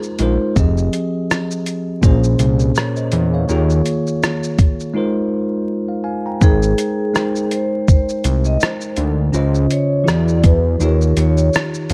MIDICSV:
0, 0, Header, 1, 5, 480
1, 0, Start_track
1, 0, Tempo, 731707
1, 366, Time_signature, 4, 2, 24, 8
1, 7830, End_track
2, 0, Start_track
2, 0, Title_t, "Vibraphone"
2, 0, Program_c, 0, 11
2, 4219, Note_on_c, 0, 68, 92
2, 4906, Note_off_c, 0, 68, 0
2, 4937, Note_on_c, 0, 72, 78
2, 5148, Note_off_c, 0, 72, 0
2, 5176, Note_on_c, 0, 72, 70
2, 5524, Note_off_c, 0, 72, 0
2, 5552, Note_on_c, 0, 75, 67
2, 5641, Note_off_c, 0, 75, 0
2, 5659, Note_on_c, 0, 72, 70
2, 5869, Note_off_c, 0, 72, 0
2, 6378, Note_on_c, 0, 73, 83
2, 6588, Note_off_c, 0, 73, 0
2, 6618, Note_on_c, 0, 74, 87
2, 6829, Note_off_c, 0, 74, 0
2, 6857, Note_on_c, 0, 71, 90
2, 7068, Note_off_c, 0, 71, 0
2, 7093, Note_on_c, 0, 70, 79
2, 7306, Note_off_c, 0, 70, 0
2, 7337, Note_on_c, 0, 73, 89
2, 7548, Note_off_c, 0, 73, 0
2, 7830, End_track
3, 0, Start_track
3, 0, Title_t, "Tine electric piano"
3, 0, Program_c, 1, 4
3, 0, Control_c, 1, 64, 127
3, 0, Note_on_c, 1, 56, 75
3, 0, Note_on_c, 1, 63, 61
3, 0, Note_on_c, 1, 65, 65
3, 0, Note_on_c, 1, 70, 74
3, 0, Note_on_c, 1, 72, 83
3, 123, Note_off_c, 1, 56, 0
3, 123, Note_on_c, 1, 56, 78
3, 129, Note_off_c, 1, 63, 0
3, 129, Note_on_c, 1, 63, 75
3, 137, Note_off_c, 1, 65, 0
3, 137, Note_on_c, 1, 65, 70
3, 142, Note_off_c, 1, 70, 0
3, 142, Note_on_c, 1, 70, 77
3, 149, Note_off_c, 1, 72, 0
3, 149, Note_on_c, 1, 72, 91
3, 339, Note_off_c, 1, 56, 0
3, 342, Note_off_c, 1, 63, 0
3, 346, Note_off_c, 1, 65, 0
3, 348, Note_off_c, 1, 70, 0
3, 352, Note_off_c, 1, 72, 0
3, 364, Note_on_c, 1, 53, 78
3, 371, Note_on_c, 1, 60, 76
3, 373, Control_c, 1, 64, 0
3, 375, Note_on_c, 1, 67, 67
3, 385, Note_on_c, 1, 68, 67
3, 391, Note_on_c, 1, 75, 80
3, 483, Control_c, 1, 64, 127
3, 1222, Note_off_c, 1, 53, 0
3, 1226, Note_off_c, 1, 60, 0
3, 1228, Note_off_c, 1, 67, 0
3, 1233, Note_off_c, 1, 68, 0
3, 1236, Note_off_c, 1, 75, 0
3, 1322, Note_on_c, 1, 46, 95
3, 1330, Note_on_c, 1, 58, 82
3, 1335, Control_c, 1, 64, 0
3, 1337, Note_on_c, 1, 61, 79
3, 1343, Note_on_c, 1, 68, 76
3, 1349, Note_on_c, 1, 72, 92
3, 1447, Control_c, 1, 64, 127
3, 1818, Note_off_c, 1, 72, 0
3, 1819, Note_on_c, 1, 73, 65
3, 1824, Note_on_c, 1, 70, 52
3, 1941, Note_off_c, 1, 73, 0
3, 1944, Note_off_c, 1, 70, 0
3, 1947, Note_on_c, 1, 75, 57
3, 1950, Note_on_c, 1, 72, 58
3, 1967, Note_off_c, 1, 46, 0
3, 1971, Note_off_c, 1, 58, 0
3, 1974, Note_off_c, 1, 61, 0
3, 1978, Note_off_c, 1, 68, 0
3, 2172, Note_off_c, 1, 75, 0
3, 2174, Note_off_c, 1, 72, 0
3, 2190, Note_on_c, 1, 77, 61
3, 2194, Note_on_c, 1, 73, 58
3, 2281, Note_on_c, 1, 51, 76
3, 2288, Note_on_c, 1, 58, 71
3, 2294, Note_on_c, 1, 65, 74
3, 2295, Control_c, 1, 64, 0
3, 2301, Note_off_c, 1, 73, 0
3, 2302, Note_on_c, 1, 68, 69
3, 2309, Note_on_c, 1, 73, 73
3, 2414, Note_off_c, 1, 77, 0
3, 2425, Control_c, 1, 64, 127
3, 3141, Note_off_c, 1, 51, 0
3, 3144, Note_off_c, 1, 58, 0
3, 3148, Note_off_c, 1, 65, 0
3, 3151, Note_off_c, 1, 68, 0
3, 3155, Note_off_c, 1, 73, 0
3, 3238, Note_on_c, 1, 56, 94
3, 3244, Note_on_c, 1, 63, 81
3, 3252, Note_on_c, 1, 65, 71
3, 3255, Control_c, 1, 64, 0
3, 3257, Note_on_c, 1, 70, 83
3, 3264, Note_on_c, 1, 72, 89
3, 3386, Control_c, 1, 64, 127
3, 3861, Note_on_c, 1, 77, 49
3, 3885, Note_off_c, 1, 56, 0
3, 3888, Note_off_c, 1, 63, 0
3, 3892, Note_off_c, 1, 65, 0
3, 3895, Note_off_c, 1, 70, 0
3, 3898, Note_off_c, 1, 72, 0
3, 3957, Note_off_c, 1, 77, 0
3, 3962, Note_on_c, 1, 80, 69
3, 3965, Note_on_c, 1, 77, 56
3, 4092, Note_off_c, 1, 80, 0
3, 4093, Note_off_c, 1, 77, 0
3, 4106, Note_on_c, 1, 82, 56
3, 4113, Note_on_c, 1, 79, 47
3, 4201, Note_on_c, 1, 56, 57
3, 4207, Note_on_c, 1, 63, 59
3, 4208, Note_off_c, 1, 79, 0
3, 4214, Control_c, 1, 64, 0
3, 4216, Note_on_c, 1, 79, 57
3, 4221, Note_on_c, 1, 70, 62
3, 4227, Note_on_c, 1, 72, 64
3, 4312, Control_c, 1, 64, 127
3, 4332, Note_off_c, 1, 82, 0
3, 4632, Note_off_c, 1, 56, 0
3, 4635, Note_off_c, 1, 63, 0
3, 4639, Note_off_c, 1, 79, 0
3, 4642, Note_off_c, 1, 70, 0
3, 4645, Note_off_c, 1, 72, 0
3, 4681, Note_on_c, 1, 56, 69
3, 4686, Note_on_c, 1, 63, 68
3, 4693, Note_on_c, 1, 79, 59
3, 4697, Note_on_c, 1, 70, 69
3, 4707, Note_on_c, 1, 72, 76
3, 5541, Note_off_c, 1, 56, 0
3, 5543, Note_off_c, 1, 63, 0
3, 5547, Note_off_c, 1, 79, 0
3, 5549, Note_off_c, 1, 70, 0
3, 5554, Note_off_c, 1, 72, 0
3, 6116, Note_on_c, 1, 49, 88
3, 6121, Note_on_c, 1, 61, 78
3, 6128, Note_on_c, 1, 65, 67
3, 6134, Note_on_c, 1, 72, 71
3, 6136, Control_c, 1, 64, 0
3, 6141, Note_on_c, 1, 75, 78
3, 6231, Control_c, 1, 64, 127
3, 6549, Note_off_c, 1, 49, 0
3, 6552, Note_off_c, 1, 61, 0
3, 6555, Note_off_c, 1, 65, 0
3, 6558, Note_off_c, 1, 72, 0
3, 6562, Note_off_c, 1, 75, 0
3, 6585, Note_on_c, 1, 52, 75
3, 6589, Note_on_c, 1, 64, 67
3, 6597, Note_on_c, 1, 66, 58
3, 6602, Note_on_c, 1, 68, 64
3, 6611, Note_on_c, 1, 74, 79
3, 6615, Control_c, 1, 64, 0
3, 6717, Control_c, 1, 64, 127
3, 7075, Note_off_c, 1, 52, 0
3, 7077, Note_off_c, 1, 64, 0
3, 7081, Note_on_c, 1, 51, 68
3, 7082, Note_off_c, 1, 66, 0
3, 7084, Note_off_c, 1, 68, 0
3, 7086, Note_on_c, 1, 63, 77
3, 7088, Note_off_c, 1, 74, 0
3, 7093, Control_c, 1, 64, 0
3, 7094, Note_on_c, 1, 65, 73
3, 7101, Note_on_c, 1, 67, 78
3, 7109, Note_on_c, 1, 73, 80
3, 7227, Control_c, 1, 64, 127
3, 7830, Note_off_c, 1, 51, 0
3, 7830, Note_off_c, 1, 63, 0
3, 7830, Note_off_c, 1, 65, 0
3, 7830, Note_off_c, 1, 67, 0
3, 7830, Note_off_c, 1, 73, 0
3, 7830, End_track
4, 0, Start_track
4, 0, Title_t, "Analog synth bass"
4, 0, Program_c, 2, 38
4, 130, Note_on_c, 2, 34, 103
4, 250, Note_off_c, 2, 34, 0
4, 370, Note_on_c, 2, 29, 99
4, 585, Note_off_c, 2, 29, 0
4, 1333, Note_on_c, 2, 34, 81
4, 1547, Note_off_c, 2, 34, 0
4, 1571, Note_on_c, 2, 36, 78
4, 1785, Note_off_c, 2, 36, 0
4, 2052, Note_on_c, 2, 40, 94
4, 2266, Note_off_c, 2, 40, 0
4, 2290, Note_on_c, 2, 39, 113
4, 2505, Note_off_c, 2, 39, 0
4, 4209, Note_on_c, 2, 32, 110
4, 4424, Note_off_c, 2, 32, 0
4, 5411, Note_on_c, 2, 36, 87
4, 5626, Note_off_c, 2, 36, 0
4, 5887, Note_on_c, 2, 38, 81
4, 6104, Note_off_c, 2, 38, 0
4, 6128, Note_on_c, 2, 37, 112
4, 6344, Note_off_c, 2, 37, 0
4, 6611, Note_on_c, 2, 40, 94
4, 7062, Note_off_c, 2, 40, 0
4, 7089, Note_on_c, 2, 39, 85
4, 7304, Note_off_c, 2, 39, 0
4, 7328, Note_on_c, 2, 39, 90
4, 7544, Note_off_c, 2, 39, 0
4, 7808, Note_on_c, 2, 41, 90
4, 7830, Note_off_c, 2, 41, 0
4, 7830, End_track
5, 0, Start_track
5, 0, Title_t, "Drums"
5, 20, Note_on_c, 9, 82, 44
5, 85, Note_off_c, 9, 82, 0
5, 122, Note_on_c, 9, 42, 57
5, 122, Note_on_c, 9, 82, 39
5, 188, Note_off_c, 9, 42, 0
5, 188, Note_off_c, 9, 82, 0
5, 368, Note_on_c, 9, 36, 95
5, 369, Note_on_c, 9, 82, 67
5, 434, Note_off_c, 9, 36, 0
5, 434, Note_off_c, 9, 82, 0
5, 508, Note_on_c, 9, 82, 45
5, 574, Note_off_c, 9, 82, 0
5, 610, Note_on_c, 9, 42, 58
5, 610, Note_on_c, 9, 82, 41
5, 676, Note_off_c, 9, 42, 0
5, 676, Note_off_c, 9, 82, 0
5, 857, Note_on_c, 9, 82, 61
5, 861, Note_on_c, 9, 37, 85
5, 923, Note_off_c, 9, 82, 0
5, 926, Note_off_c, 9, 37, 0
5, 991, Note_on_c, 9, 82, 54
5, 1057, Note_off_c, 9, 82, 0
5, 1091, Note_on_c, 9, 42, 60
5, 1091, Note_on_c, 9, 82, 50
5, 1157, Note_off_c, 9, 42, 0
5, 1157, Note_off_c, 9, 82, 0
5, 1331, Note_on_c, 9, 82, 65
5, 1332, Note_on_c, 9, 36, 85
5, 1396, Note_off_c, 9, 82, 0
5, 1397, Note_off_c, 9, 36, 0
5, 1468, Note_on_c, 9, 82, 45
5, 1533, Note_off_c, 9, 82, 0
5, 1568, Note_on_c, 9, 42, 61
5, 1568, Note_on_c, 9, 82, 55
5, 1634, Note_off_c, 9, 42, 0
5, 1634, Note_off_c, 9, 82, 0
5, 1702, Note_on_c, 9, 82, 41
5, 1767, Note_off_c, 9, 82, 0
5, 1806, Note_on_c, 9, 82, 59
5, 1821, Note_on_c, 9, 37, 127
5, 1871, Note_off_c, 9, 82, 0
5, 1887, Note_off_c, 9, 37, 0
5, 1944, Note_on_c, 9, 82, 42
5, 2009, Note_off_c, 9, 82, 0
5, 2045, Note_on_c, 9, 42, 60
5, 2045, Note_on_c, 9, 82, 40
5, 2110, Note_off_c, 9, 42, 0
5, 2110, Note_off_c, 9, 82, 0
5, 2289, Note_on_c, 9, 82, 67
5, 2355, Note_off_c, 9, 82, 0
5, 2427, Note_on_c, 9, 82, 38
5, 2492, Note_off_c, 9, 82, 0
5, 2530, Note_on_c, 9, 42, 58
5, 2530, Note_on_c, 9, 82, 40
5, 2595, Note_off_c, 9, 42, 0
5, 2595, Note_off_c, 9, 82, 0
5, 2670, Note_on_c, 9, 82, 43
5, 2735, Note_off_c, 9, 82, 0
5, 2775, Note_on_c, 9, 82, 58
5, 2778, Note_on_c, 9, 37, 85
5, 2840, Note_off_c, 9, 82, 0
5, 2844, Note_off_c, 9, 37, 0
5, 2909, Note_on_c, 9, 82, 50
5, 2974, Note_off_c, 9, 82, 0
5, 3008, Note_on_c, 9, 36, 99
5, 3008, Note_on_c, 9, 42, 56
5, 3008, Note_on_c, 9, 82, 46
5, 3074, Note_off_c, 9, 36, 0
5, 3074, Note_off_c, 9, 42, 0
5, 3074, Note_off_c, 9, 82, 0
5, 3149, Note_on_c, 9, 82, 37
5, 3215, Note_off_c, 9, 82, 0
5, 4207, Note_on_c, 9, 82, 64
5, 4208, Note_on_c, 9, 36, 87
5, 4272, Note_off_c, 9, 82, 0
5, 4273, Note_off_c, 9, 36, 0
5, 4346, Note_on_c, 9, 82, 48
5, 4412, Note_off_c, 9, 82, 0
5, 4449, Note_on_c, 9, 42, 64
5, 4449, Note_on_c, 9, 82, 46
5, 4515, Note_off_c, 9, 42, 0
5, 4515, Note_off_c, 9, 82, 0
5, 4692, Note_on_c, 9, 82, 59
5, 4696, Note_on_c, 9, 37, 102
5, 4758, Note_off_c, 9, 82, 0
5, 4761, Note_off_c, 9, 37, 0
5, 4826, Note_on_c, 9, 82, 53
5, 4892, Note_off_c, 9, 82, 0
5, 4929, Note_on_c, 9, 42, 68
5, 4929, Note_on_c, 9, 82, 43
5, 4994, Note_off_c, 9, 42, 0
5, 4994, Note_off_c, 9, 82, 0
5, 5170, Note_on_c, 9, 82, 65
5, 5171, Note_on_c, 9, 36, 84
5, 5235, Note_off_c, 9, 82, 0
5, 5237, Note_off_c, 9, 36, 0
5, 5307, Note_on_c, 9, 82, 46
5, 5373, Note_off_c, 9, 82, 0
5, 5407, Note_on_c, 9, 42, 74
5, 5407, Note_on_c, 9, 82, 55
5, 5473, Note_off_c, 9, 42, 0
5, 5473, Note_off_c, 9, 82, 0
5, 5540, Note_on_c, 9, 82, 45
5, 5606, Note_off_c, 9, 82, 0
5, 5645, Note_on_c, 9, 82, 65
5, 5661, Note_on_c, 9, 37, 127
5, 5711, Note_off_c, 9, 82, 0
5, 5726, Note_off_c, 9, 37, 0
5, 5779, Note_on_c, 9, 82, 47
5, 5845, Note_off_c, 9, 82, 0
5, 5881, Note_on_c, 9, 42, 56
5, 5881, Note_on_c, 9, 82, 41
5, 5947, Note_off_c, 9, 42, 0
5, 5947, Note_off_c, 9, 82, 0
5, 6124, Note_on_c, 9, 82, 64
5, 6190, Note_off_c, 9, 82, 0
5, 6263, Note_on_c, 9, 82, 42
5, 6329, Note_off_c, 9, 82, 0
5, 6366, Note_on_c, 9, 42, 54
5, 6366, Note_on_c, 9, 82, 39
5, 6432, Note_off_c, 9, 42, 0
5, 6432, Note_off_c, 9, 82, 0
5, 6611, Note_on_c, 9, 82, 61
5, 6615, Note_on_c, 9, 37, 101
5, 6677, Note_off_c, 9, 82, 0
5, 6681, Note_off_c, 9, 37, 0
5, 6745, Note_on_c, 9, 82, 49
5, 6811, Note_off_c, 9, 82, 0
5, 6846, Note_on_c, 9, 42, 64
5, 6846, Note_on_c, 9, 82, 50
5, 6847, Note_on_c, 9, 36, 91
5, 6912, Note_off_c, 9, 42, 0
5, 6912, Note_off_c, 9, 82, 0
5, 6913, Note_off_c, 9, 36, 0
5, 7087, Note_on_c, 9, 82, 65
5, 7153, Note_off_c, 9, 82, 0
5, 7225, Note_on_c, 9, 82, 46
5, 7291, Note_off_c, 9, 82, 0
5, 7326, Note_on_c, 9, 42, 76
5, 7326, Note_on_c, 9, 82, 46
5, 7391, Note_off_c, 9, 42, 0
5, 7391, Note_off_c, 9, 82, 0
5, 7461, Note_on_c, 9, 82, 45
5, 7527, Note_off_c, 9, 82, 0
5, 7566, Note_on_c, 9, 82, 67
5, 7582, Note_on_c, 9, 37, 122
5, 7632, Note_off_c, 9, 82, 0
5, 7647, Note_off_c, 9, 37, 0
5, 7703, Note_on_c, 9, 82, 46
5, 7768, Note_off_c, 9, 82, 0
5, 7804, Note_on_c, 9, 42, 59
5, 7804, Note_on_c, 9, 82, 43
5, 7830, Note_off_c, 9, 42, 0
5, 7830, Note_off_c, 9, 82, 0
5, 7830, End_track
0, 0, End_of_file